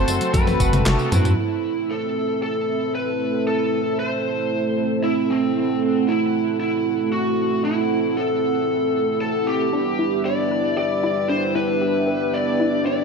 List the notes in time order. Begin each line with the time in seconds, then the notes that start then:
Already playing: A3 C4 F#4 A4 C5 F#5 A5 C6
0.08 F#1 C4, closed hi-hat, tambourine
0.21 F#3, closed hi-hat, tambourine
0.34 F#1 F#3 B4 B5, kick, closed hi-hat, high tom, tambourine
0.47 snare, high tom, tambourine
0.60 F#1 F#4, kick, closed hi-hat, tambourine
0.73 C4, closed hi-hat, mid tom, tambourine
0.86 F#1 F#3 F#4 A4 A5, snare, clap, closed hi-hat, mid tom, tambourine
0.99 tambourine
1.12 F#2 A3 C4 E4 F#4 B4, closed hi-hat, mid tom, tambourine
1.25 F#3, closed hi-hat, mid tom, tambourine
1.38 A3 C4 E4 A4 E5
1.91 A4
2.43 A4
2.95 B4
3.47 A4
3.99 C5
5.04 E4
5.30 C4
5.56 A3 C4 E4 A4 F#5
6.08 E4
6.60 E4
7.12 F#4
7.64 E4
8.17 A4
9.21 A4
9.47 G4
9.73 G3 B3 D4 E4 G4 B4 E5
9.99 E4
10.25 G4 D5
10.51 B4
10.77 G4 D5
11.04 E4
11.30 D4 C5
11.56 E4 B4
11.81 G4
12.08 B4
12.34 G4 D5
12.60 E4
12.86 D4 D5